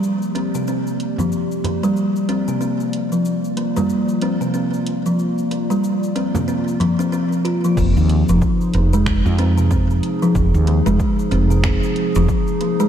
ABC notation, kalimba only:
X:1
M:4/4
L:1/16
Q:"Swing 16ths" 1/4=93
K:Fdor
V:1 name="Kalimba"
G,2 C C, C z2 F,3 B, G,3 C C, | C z2 F,3 B, G,3 C C, C z2 F,- | F,2 B, G,3 C C, C z F, C C z F F, | C z2 F,3 B, A,3 C C, C z2 F,- |
F,2 B, A,3 C C, C z2 F,3 B, A, |]